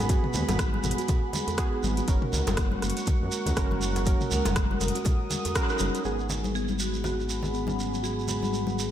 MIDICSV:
0, 0, Header, 1, 9, 480
1, 0, Start_track
1, 0, Key_signature, 5, "minor"
1, 0, Tempo, 495868
1, 95, Time_signature, 4, 2, 24, 8
1, 8627, End_track
2, 0, Start_track
2, 0, Title_t, "Analog synth pad"
2, 0, Program_c, 0, 89
2, 0, Note_on_c, 0, 68, 82
2, 0, Note_on_c, 0, 78, 73
2, 0, Note_on_c, 0, 83, 89
2, 1975, Note_off_c, 0, 78, 0
2, 1977, Note_off_c, 0, 68, 0
2, 1978, Note_off_c, 0, 83, 0
2, 2017, Note_on_c, 0, 78, 76
2, 2017, Note_on_c, 0, 85, 93
2, 2018, Note_on_c, 0, 70, 83
2, 3917, Note_off_c, 0, 85, 0
2, 3934, Note_on_c, 0, 87, 94
2, 5818, Note_off_c, 0, 70, 0
2, 5818, Note_off_c, 0, 78, 0
2, 5836, Note_off_c, 0, 87, 0
2, 5854, Note_on_c, 0, 68, 79
2, 5856, Note_on_c, 0, 78, 72
2, 5857, Note_on_c, 0, 83, 88
2, 8627, Note_off_c, 0, 68, 0
2, 8627, Note_off_c, 0, 78, 0
2, 8627, Note_off_c, 0, 83, 0
2, 8627, End_track
3, 0, Start_track
3, 0, Title_t, "Marimba"
3, 0, Program_c, 1, 12
3, 6343, Note_on_c, 1, 68, 108
3, 6563, Note_off_c, 1, 68, 0
3, 6582, Note_on_c, 1, 66, 90
3, 6802, Note_off_c, 1, 66, 0
3, 6821, Note_on_c, 1, 66, 95
3, 7781, Note_on_c, 1, 68, 91
3, 7807, Note_off_c, 1, 66, 0
3, 8627, Note_off_c, 1, 68, 0
3, 8627, End_track
4, 0, Start_track
4, 0, Title_t, "Synth keys"
4, 0, Program_c, 2, 88
4, 91, Note_on_c, 2, 59, 76
4, 91, Note_on_c, 2, 68, 81
4, 92, Note_on_c, 2, 66, 70
4, 1509, Note_off_c, 2, 59, 0
4, 1509, Note_off_c, 2, 68, 0
4, 1510, Note_off_c, 2, 66, 0
4, 1530, Note_on_c, 2, 68, 95
4, 1531, Note_on_c, 2, 59, 85
4, 1531, Note_on_c, 2, 66, 80
4, 1989, Note_off_c, 2, 59, 0
4, 1989, Note_off_c, 2, 66, 0
4, 1989, Note_off_c, 2, 68, 0
4, 2012, Note_on_c, 2, 66, 70
4, 2012, Note_on_c, 2, 70, 85
4, 2013, Note_on_c, 2, 61, 79
4, 3430, Note_off_c, 2, 61, 0
4, 3430, Note_off_c, 2, 66, 0
4, 3430, Note_off_c, 2, 70, 0
4, 3452, Note_on_c, 2, 61, 85
4, 3452, Note_on_c, 2, 66, 77
4, 3452, Note_on_c, 2, 70, 90
4, 3909, Note_off_c, 2, 61, 0
4, 3910, Note_off_c, 2, 66, 0
4, 3910, Note_off_c, 2, 70, 0
4, 3933, Note_on_c, 2, 61, 77
4, 3934, Note_on_c, 2, 70, 84
4, 3935, Note_on_c, 2, 66, 70
4, 5350, Note_off_c, 2, 61, 0
4, 5351, Note_off_c, 2, 66, 0
4, 5351, Note_off_c, 2, 70, 0
4, 5375, Note_on_c, 2, 66, 79
4, 5376, Note_on_c, 2, 61, 84
4, 5377, Note_on_c, 2, 70, 94
4, 5831, Note_off_c, 2, 61, 0
4, 5831, Note_off_c, 2, 66, 0
4, 5832, Note_off_c, 2, 70, 0
4, 5858, Note_on_c, 2, 59, 74
4, 5858, Note_on_c, 2, 66, 64
4, 5859, Note_on_c, 2, 68, 80
4, 8627, Note_off_c, 2, 59, 0
4, 8627, Note_off_c, 2, 66, 0
4, 8627, Note_off_c, 2, 68, 0
4, 8627, End_track
5, 0, Start_track
5, 0, Title_t, "Kalimba"
5, 0, Program_c, 3, 108
5, 89, Note_on_c, 3, 66, 83
5, 168, Note_off_c, 3, 66, 0
5, 324, Note_on_c, 3, 56, 99
5, 405, Note_off_c, 3, 56, 0
5, 568, Note_on_c, 3, 56, 82
5, 696, Note_off_c, 3, 56, 0
5, 707, Note_on_c, 3, 56, 77
5, 765, Note_off_c, 3, 56, 0
5, 951, Note_on_c, 3, 66, 101
5, 1040, Note_off_c, 3, 66, 0
5, 1052, Note_on_c, 3, 66, 81
5, 1129, Note_off_c, 3, 66, 0
5, 1293, Note_on_c, 3, 56, 77
5, 1427, Note_off_c, 3, 56, 0
5, 1530, Note_on_c, 3, 68, 81
5, 1659, Note_off_c, 3, 68, 0
5, 1671, Note_on_c, 3, 63, 73
5, 1727, Note_off_c, 3, 63, 0
5, 1911, Note_on_c, 3, 66, 100
5, 2008, Note_off_c, 3, 66, 0
5, 2013, Note_on_c, 3, 56, 88
5, 2090, Note_off_c, 3, 56, 0
5, 2253, Note_on_c, 3, 56, 79
5, 2380, Note_off_c, 3, 56, 0
5, 2494, Note_on_c, 3, 58, 82
5, 2621, Note_off_c, 3, 58, 0
5, 2634, Note_on_c, 3, 56, 79
5, 2688, Note_off_c, 3, 56, 0
5, 2872, Note_on_c, 3, 56, 78
5, 2928, Note_off_c, 3, 56, 0
5, 2969, Note_on_c, 3, 66, 82
5, 3048, Note_off_c, 3, 66, 0
5, 3209, Note_on_c, 3, 56, 76
5, 3345, Note_off_c, 3, 56, 0
5, 3449, Note_on_c, 3, 58, 83
5, 3579, Note_off_c, 3, 58, 0
5, 3593, Note_on_c, 3, 61, 75
5, 3689, Note_off_c, 3, 61, 0
5, 3834, Note_on_c, 3, 54, 78
5, 3889, Note_off_c, 3, 54, 0
5, 3936, Note_on_c, 3, 66, 85
5, 4011, Note_off_c, 3, 66, 0
5, 4172, Note_on_c, 3, 56, 104
5, 4249, Note_off_c, 3, 56, 0
5, 4416, Note_on_c, 3, 56, 84
5, 4542, Note_off_c, 3, 56, 0
5, 4556, Note_on_c, 3, 56, 78
5, 4609, Note_off_c, 3, 56, 0
5, 4793, Note_on_c, 3, 66, 98
5, 4880, Note_off_c, 3, 66, 0
5, 4892, Note_on_c, 3, 66, 83
5, 4969, Note_off_c, 3, 66, 0
5, 5128, Note_on_c, 3, 68, 78
5, 5265, Note_off_c, 3, 68, 0
5, 5372, Note_on_c, 3, 54, 79
5, 5500, Note_off_c, 3, 54, 0
5, 5515, Note_on_c, 3, 63, 101
5, 5569, Note_off_c, 3, 63, 0
5, 5755, Note_on_c, 3, 63, 75
5, 5845, Note_off_c, 3, 63, 0
5, 5853, Note_on_c, 3, 56, 77
5, 5930, Note_off_c, 3, 56, 0
5, 6095, Note_on_c, 3, 56, 70
5, 6221, Note_off_c, 3, 56, 0
5, 6332, Note_on_c, 3, 59, 79
5, 6460, Note_off_c, 3, 59, 0
5, 6473, Note_on_c, 3, 56, 73
5, 6528, Note_off_c, 3, 56, 0
5, 6711, Note_on_c, 3, 56, 72
5, 6767, Note_off_c, 3, 56, 0
5, 6813, Note_on_c, 3, 66, 81
5, 6890, Note_off_c, 3, 66, 0
5, 7049, Note_on_c, 3, 56, 72
5, 7186, Note_off_c, 3, 56, 0
5, 7289, Note_on_c, 3, 59, 76
5, 7418, Note_off_c, 3, 59, 0
5, 7429, Note_on_c, 3, 61, 69
5, 7527, Note_off_c, 3, 61, 0
5, 7669, Note_on_c, 3, 54, 72
5, 7726, Note_off_c, 3, 54, 0
5, 7770, Note_on_c, 3, 66, 82
5, 7848, Note_off_c, 3, 66, 0
5, 8009, Note_on_c, 3, 56, 94
5, 8088, Note_off_c, 3, 56, 0
5, 8248, Note_on_c, 3, 56, 80
5, 8378, Note_off_c, 3, 56, 0
5, 8392, Note_on_c, 3, 56, 71
5, 8448, Note_off_c, 3, 56, 0
5, 8627, End_track
6, 0, Start_track
6, 0, Title_t, "Analog synth bass"
6, 0, Program_c, 4, 38
6, 0, Note_on_c, 4, 32, 100
6, 158, Note_off_c, 4, 32, 0
6, 332, Note_on_c, 4, 39, 103
6, 425, Note_off_c, 4, 39, 0
6, 470, Note_on_c, 4, 32, 93
6, 758, Note_off_c, 4, 32, 0
6, 811, Note_on_c, 4, 32, 80
6, 905, Note_off_c, 4, 32, 0
6, 1774, Note_on_c, 4, 32, 98
6, 1946, Note_off_c, 4, 32, 0
6, 2016, Note_on_c, 4, 30, 101
6, 2107, Note_off_c, 4, 30, 0
6, 2253, Note_on_c, 4, 37, 103
6, 2346, Note_off_c, 4, 37, 0
6, 2396, Note_on_c, 4, 30, 92
6, 2680, Note_off_c, 4, 30, 0
6, 2735, Note_on_c, 4, 30, 78
6, 2827, Note_off_c, 4, 30, 0
6, 3115, Note_on_c, 4, 42, 100
6, 3181, Note_off_c, 4, 42, 0
6, 3355, Note_on_c, 4, 37, 96
6, 3421, Note_off_c, 4, 37, 0
6, 3457, Note_on_c, 4, 30, 99
6, 3999, Note_off_c, 4, 30, 0
6, 4175, Note_on_c, 4, 37, 101
6, 4267, Note_off_c, 4, 37, 0
6, 4316, Note_on_c, 4, 30, 93
6, 4601, Note_off_c, 4, 30, 0
6, 4656, Note_on_c, 4, 30, 81
6, 4747, Note_off_c, 4, 30, 0
6, 5617, Note_on_c, 4, 30, 98
6, 5708, Note_off_c, 4, 30, 0
6, 5855, Note_on_c, 4, 32, 92
6, 8627, Note_off_c, 4, 32, 0
6, 8627, End_track
7, 0, Start_track
7, 0, Title_t, "Djembe"
7, 91, Note_on_c, 9, 63, 61
7, 188, Note_off_c, 9, 63, 0
7, 470, Note_on_c, 9, 62, 98
7, 567, Note_off_c, 9, 62, 0
7, 816, Note_on_c, 9, 63, 60
7, 913, Note_off_c, 9, 63, 0
7, 1055, Note_on_c, 9, 62, 82
7, 1152, Note_off_c, 9, 62, 0
7, 1429, Note_on_c, 9, 63, 76
7, 1526, Note_off_c, 9, 63, 0
7, 2395, Note_on_c, 9, 62, 106
7, 2492, Note_off_c, 9, 62, 0
7, 3352, Note_on_c, 9, 63, 69
7, 3449, Note_off_c, 9, 63, 0
7, 3834, Note_on_c, 9, 62, 74
7, 3931, Note_off_c, 9, 62, 0
7, 3932, Note_on_c, 9, 63, 52
7, 4028, Note_off_c, 9, 63, 0
7, 4312, Note_on_c, 9, 62, 103
7, 4409, Note_off_c, 9, 62, 0
7, 4654, Note_on_c, 9, 63, 62
7, 4751, Note_off_c, 9, 63, 0
7, 4887, Note_on_c, 9, 62, 80
7, 4984, Note_off_c, 9, 62, 0
7, 5279, Note_on_c, 9, 63, 77
7, 5376, Note_off_c, 9, 63, 0
7, 8627, End_track
8, 0, Start_track
8, 0, Title_t, "Shekere"
8, 91, Note_on_c, 9, 82, 48
8, 188, Note_off_c, 9, 82, 0
8, 327, Note_on_c, 9, 82, 90
8, 423, Note_off_c, 9, 82, 0
8, 477, Note_on_c, 9, 82, 39
8, 573, Note_off_c, 9, 82, 0
8, 573, Note_on_c, 9, 82, 55
8, 669, Note_off_c, 9, 82, 0
8, 810, Note_on_c, 9, 82, 83
8, 906, Note_off_c, 9, 82, 0
8, 962, Note_on_c, 9, 82, 38
8, 1046, Note_off_c, 9, 82, 0
8, 1046, Note_on_c, 9, 82, 50
8, 1143, Note_off_c, 9, 82, 0
8, 1301, Note_on_c, 9, 82, 86
8, 1398, Note_off_c, 9, 82, 0
8, 1437, Note_on_c, 9, 82, 36
8, 1529, Note_off_c, 9, 82, 0
8, 1529, Note_on_c, 9, 82, 50
8, 1626, Note_off_c, 9, 82, 0
8, 1775, Note_on_c, 9, 82, 84
8, 1872, Note_off_c, 9, 82, 0
8, 1916, Note_on_c, 9, 82, 36
8, 2013, Note_off_c, 9, 82, 0
8, 2016, Note_on_c, 9, 82, 53
8, 2112, Note_off_c, 9, 82, 0
8, 2256, Note_on_c, 9, 82, 83
8, 2353, Note_off_c, 9, 82, 0
8, 2393, Note_on_c, 9, 82, 39
8, 2490, Note_off_c, 9, 82, 0
8, 2499, Note_on_c, 9, 82, 50
8, 2595, Note_off_c, 9, 82, 0
8, 2739, Note_on_c, 9, 82, 80
8, 2836, Note_off_c, 9, 82, 0
8, 2876, Note_on_c, 9, 82, 39
8, 2961, Note_off_c, 9, 82, 0
8, 2961, Note_on_c, 9, 82, 46
8, 3058, Note_off_c, 9, 82, 0
8, 3209, Note_on_c, 9, 82, 76
8, 3306, Note_off_c, 9, 82, 0
8, 3356, Note_on_c, 9, 82, 34
8, 3452, Note_off_c, 9, 82, 0
8, 3452, Note_on_c, 9, 82, 46
8, 3549, Note_off_c, 9, 82, 0
8, 3694, Note_on_c, 9, 82, 86
8, 3790, Note_off_c, 9, 82, 0
8, 3833, Note_on_c, 9, 82, 36
8, 3927, Note_off_c, 9, 82, 0
8, 3927, Note_on_c, 9, 82, 52
8, 4024, Note_off_c, 9, 82, 0
8, 4070, Note_on_c, 9, 82, 37
8, 4167, Note_off_c, 9, 82, 0
8, 4173, Note_on_c, 9, 82, 86
8, 4270, Note_off_c, 9, 82, 0
8, 4312, Note_on_c, 9, 82, 36
8, 4409, Note_off_c, 9, 82, 0
8, 4415, Note_on_c, 9, 82, 54
8, 4512, Note_off_c, 9, 82, 0
8, 4655, Note_on_c, 9, 82, 87
8, 4752, Note_off_c, 9, 82, 0
8, 4788, Note_on_c, 9, 82, 39
8, 4885, Note_off_c, 9, 82, 0
8, 4888, Note_on_c, 9, 82, 56
8, 4985, Note_off_c, 9, 82, 0
8, 5138, Note_on_c, 9, 82, 81
8, 5234, Note_off_c, 9, 82, 0
8, 5273, Note_on_c, 9, 82, 36
8, 5369, Note_off_c, 9, 82, 0
8, 5374, Note_on_c, 9, 82, 52
8, 5471, Note_off_c, 9, 82, 0
8, 5506, Note_on_c, 9, 82, 36
8, 5600, Note_off_c, 9, 82, 0
8, 5600, Note_on_c, 9, 82, 89
8, 5697, Note_off_c, 9, 82, 0
8, 5760, Note_on_c, 9, 82, 38
8, 5850, Note_off_c, 9, 82, 0
8, 5850, Note_on_c, 9, 82, 49
8, 5947, Note_off_c, 9, 82, 0
8, 5992, Note_on_c, 9, 82, 23
8, 6089, Note_off_c, 9, 82, 0
8, 6098, Note_on_c, 9, 82, 91
8, 6195, Note_off_c, 9, 82, 0
8, 6235, Note_on_c, 9, 82, 40
8, 6332, Note_off_c, 9, 82, 0
8, 6340, Note_on_c, 9, 82, 53
8, 6437, Note_off_c, 9, 82, 0
8, 6467, Note_on_c, 9, 82, 24
8, 6564, Note_off_c, 9, 82, 0
8, 6574, Note_on_c, 9, 82, 91
8, 6671, Note_off_c, 9, 82, 0
8, 6716, Note_on_c, 9, 82, 40
8, 6812, Note_off_c, 9, 82, 0
8, 6820, Note_on_c, 9, 82, 51
8, 6917, Note_off_c, 9, 82, 0
8, 6969, Note_on_c, 9, 82, 23
8, 7059, Note_off_c, 9, 82, 0
8, 7059, Note_on_c, 9, 82, 79
8, 7156, Note_off_c, 9, 82, 0
8, 7200, Note_on_c, 9, 82, 34
8, 7297, Note_off_c, 9, 82, 0
8, 7297, Note_on_c, 9, 82, 48
8, 7394, Note_off_c, 9, 82, 0
8, 7444, Note_on_c, 9, 82, 25
8, 7541, Note_off_c, 9, 82, 0
8, 7544, Note_on_c, 9, 82, 82
8, 7641, Note_off_c, 9, 82, 0
8, 7683, Note_on_c, 9, 82, 41
8, 7780, Note_off_c, 9, 82, 0
8, 7782, Note_on_c, 9, 82, 55
8, 7879, Note_off_c, 9, 82, 0
8, 7930, Note_on_c, 9, 82, 25
8, 8017, Note_off_c, 9, 82, 0
8, 8017, Note_on_c, 9, 82, 87
8, 8114, Note_off_c, 9, 82, 0
8, 8167, Note_on_c, 9, 82, 38
8, 8263, Note_off_c, 9, 82, 0
8, 8263, Note_on_c, 9, 82, 56
8, 8360, Note_off_c, 9, 82, 0
8, 8402, Note_on_c, 9, 82, 27
8, 8499, Note_off_c, 9, 82, 0
8, 8506, Note_on_c, 9, 82, 83
8, 8603, Note_off_c, 9, 82, 0
8, 8627, End_track
9, 0, Start_track
9, 0, Title_t, "Drums"
9, 89, Note_on_c, 9, 42, 56
9, 95, Note_on_c, 9, 36, 116
9, 186, Note_off_c, 9, 42, 0
9, 192, Note_off_c, 9, 36, 0
9, 230, Note_on_c, 9, 47, 96
9, 327, Note_off_c, 9, 47, 0
9, 329, Note_on_c, 9, 64, 74
9, 425, Note_off_c, 9, 64, 0
9, 471, Note_on_c, 9, 42, 44
9, 477, Note_on_c, 9, 63, 107
9, 568, Note_off_c, 9, 42, 0
9, 571, Note_on_c, 9, 37, 103
9, 571, Note_on_c, 9, 42, 55
9, 574, Note_off_c, 9, 63, 0
9, 575, Note_on_c, 9, 36, 115
9, 668, Note_off_c, 9, 37, 0
9, 668, Note_off_c, 9, 42, 0
9, 672, Note_off_c, 9, 36, 0
9, 714, Note_on_c, 9, 63, 97
9, 810, Note_on_c, 9, 42, 42
9, 810, Note_on_c, 9, 47, 92
9, 811, Note_off_c, 9, 63, 0
9, 882, Note_off_c, 9, 42, 0
9, 882, Note_on_c, 9, 42, 55
9, 907, Note_off_c, 9, 47, 0
9, 952, Note_off_c, 9, 42, 0
9, 952, Note_on_c, 9, 42, 45
9, 1049, Note_off_c, 9, 42, 0
9, 1050, Note_on_c, 9, 42, 55
9, 1050, Note_on_c, 9, 47, 93
9, 1056, Note_on_c, 9, 36, 112
9, 1146, Note_off_c, 9, 42, 0
9, 1146, Note_off_c, 9, 47, 0
9, 1153, Note_off_c, 9, 36, 0
9, 1288, Note_on_c, 9, 64, 92
9, 1292, Note_on_c, 9, 42, 32
9, 1292, Note_on_c, 9, 63, 62
9, 1385, Note_off_c, 9, 64, 0
9, 1388, Note_off_c, 9, 42, 0
9, 1389, Note_off_c, 9, 63, 0
9, 1430, Note_on_c, 9, 42, 44
9, 1527, Note_off_c, 9, 42, 0
9, 1528, Note_on_c, 9, 37, 96
9, 1528, Note_on_c, 9, 42, 54
9, 1536, Note_on_c, 9, 36, 109
9, 1625, Note_off_c, 9, 37, 0
9, 1625, Note_off_c, 9, 42, 0
9, 1633, Note_off_c, 9, 36, 0
9, 1783, Note_on_c, 9, 63, 97
9, 1879, Note_off_c, 9, 63, 0
9, 1909, Note_on_c, 9, 42, 44
9, 2006, Note_off_c, 9, 42, 0
9, 2010, Note_on_c, 9, 42, 57
9, 2016, Note_on_c, 9, 36, 115
9, 2107, Note_off_c, 9, 42, 0
9, 2112, Note_off_c, 9, 36, 0
9, 2149, Note_on_c, 9, 47, 97
9, 2246, Note_off_c, 9, 47, 0
9, 2254, Note_on_c, 9, 64, 84
9, 2351, Note_off_c, 9, 64, 0
9, 2391, Note_on_c, 9, 42, 45
9, 2391, Note_on_c, 9, 63, 90
9, 2488, Note_off_c, 9, 42, 0
9, 2488, Note_off_c, 9, 63, 0
9, 2488, Note_on_c, 9, 37, 97
9, 2488, Note_on_c, 9, 42, 58
9, 2497, Note_on_c, 9, 36, 111
9, 2585, Note_off_c, 9, 37, 0
9, 2585, Note_off_c, 9, 42, 0
9, 2593, Note_off_c, 9, 36, 0
9, 2628, Note_on_c, 9, 63, 99
9, 2725, Note_off_c, 9, 63, 0
9, 2733, Note_on_c, 9, 37, 59
9, 2733, Note_on_c, 9, 42, 44
9, 2803, Note_off_c, 9, 42, 0
9, 2803, Note_on_c, 9, 42, 58
9, 2830, Note_off_c, 9, 37, 0
9, 2873, Note_off_c, 9, 42, 0
9, 2873, Note_on_c, 9, 42, 46
9, 2970, Note_off_c, 9, 42, 0
9, 2973, Note_on_c, 9, 42, 55
9, 2976, Note_on_c, 9, 64, 98
9, 2977, Note_on_c, 9, 36, 116
9, 3069, Note_off_c, 9, 42, 0
9, 3072, Note_off_c, 9, 64, 0
9, 3073, Note_off_c, 9, 36, 0
9, 3215, Note_on_c, 9, 42, 33
9, 3312, Note_off_c, 9, 42, 0
9, 3351, Note_on_c, 9, 64, 87
9, 3355, Note_on_c, 9, 42, 48
9, 3447, Note_off_c, 9, 64, 0
9, 3452, Note_off_c, 9, 42, 0
9, 3454, Note_on_c, 9, 37, 95
9, 3454, Note_on_c, 9, 42, 58
9, 3458, Note_on_c, 9, 36, 110
9, 3551, Note_off_c, 9, 37, 0
9, 3551, Note_off_c, 9, 42, 0
9, 3554, Note_off_c, 9, 36, 0
9, 3593, Note_on_c, 9, 64, 82
9, 3600, Note_on_c, 9, 63, 98
9, 3689, Note_off_c, 9, 64, 0
9, 3697, Note_off_c, 9, 63, 0
9, 3834, Note_on_c, 9, 42, 45
9, 3931, Note_off_c, 9, 42, 0
9, 3936, Note_on_c, 9, 42, 58
9, 3938, Note_on_c, 9, 36, 114
9, 4033, Note_off_c, 9, 42, 0
9, 4035, Note_off_c, 9, 36, 0
9, 4074, Note_on_c, 9, 47, 94
9, 4171, Note_off_c, 9, 47, 0
9, 4177, Note_on_c, 9, 64, 85
9, 4274, Note_off_c, 9, 64, 0
9, 4311, Note_on_c, 9, 63, 109
9, 4314, Note_on_c, 9, 42, 48
9, 4407, Note_off_c, 9, 63, 0
9, 4411, Note_off_c, 9, 42, 0
9, 4413, Note_on_c, 9, 37, 104
9, 4413, Note_on_c, 9, 42, 60
9, 4418, Note_on_c, 9, 36, 112
9, 4510, Note_off_c, 9, 37, 0
9, 4510, Note_off_c, 9, 42, 0
9, 4515, Note_off_c, 9, 36, 0
9, 4557, Note_on_c, 9, 63, 106
9, 4654, Note_off_c, 9, 63, 0
9, 4656, Note_on_c, 9, 42, 44
9, 4656, Note_on_c, 9, 47, 83
9, 4726, Note_off_c, 9, 42, 0
9, 4726, Note_on_c, 9, 42, 57
9, 4753, Note_off_c, 9, 47, 0
9, 4796, Note_off_c, 9, 42, 0
9, 4796, Note_on_c, 9, 42, 46
9, 4893, Note_off_c, 9, 42, 0
9, 4895, Note_on_c, 9, 42, 58
9, 4895, Note_on_c, 9, 47, 92
9, 4899, Note_on_c, 9, 36, 112
9, 4992, Note_off_c, 9, 42, 0
9, 4992, Note_off_c, 9, 47, 0
9, 4995, Note_off_c, 9, 36, 0
9, 5132, Note_on_c, 9, 63, 67
9, 5136, Note_on_c, 9, 42, 34
9, 5137, Note_on_c, 9, 64, 91
9, 5228, Note_off_c, 9, 63, 0
9, 5233, Note_off_c, 9, 42, 0
9, 5234, Note_off_c, 9, 64, 0
9, 5276, Note_on_c, 9, 42, 48
9, 5373, Note_off_c, 9, 42, 0
9, 5377, Note_on_c, 9, 37, 102
9, 5377, Note_on_c, 9, 42, 58
9, 5378, Note_on_c, 9, 36, 112
9, 5474, Note_off_c, 9, 37, 0
9, 5474, Note_off_c, 9, 42, 0
9, 5475, Note_off_c, 9, 36, 0
9, 5616, Note_on_c, 9, 42, 34
9, 5616, Note_on_c, 9, 63, 97
9, 5713, Note_off_c, 9, 42, 0
9, 5713, Note_off_c, 9, 63, 0
9, 5756, Note_on_c, 9, 42, 44
9, 5853, Note_off_c, 9, 42, 0
9, 6096, Note_on_c, 9, 64, 95
9, 6192, Note_off_c, 9, 64, 0
9, 6237, Note_on_c, 9, 63, 98
9, 6334, Note_off_c, 9, 63, 0
9, 6479, Note_on_c, 9, 63, 92
9, 6576, Note_off_c, 9, 63, 0
9, 6815, Note_on_c, 9, 64, 98
9, 6912, Note_off_c, 9, 64, 0
9, 7188, Note_on_c, 9, 64, 90
9, 7285, Note_off_c, 9, 64, 0
9, 7423, Note_on_c, 9, 63, 99
9, 7431, Note_on_c, 9, 64, 89
9, 7520, Note_off_c, 9, 63, 0
9, 7528, Note_off_c, 9, 64, 0
9, 8013, Note_on_c, 9, 64, 81
9, 8110, Note_off_c, 9, 64, 0
9, 8156, Note_on_c, 9, 63, 107
9, 8253, Note_off_c, 9, 63, 0
9, 8390, Note_on_c, 9, 63, 109
9, 8487, Note_off_c, 9, 63, 0
9, 8627, End_track
0, 0, End_of_file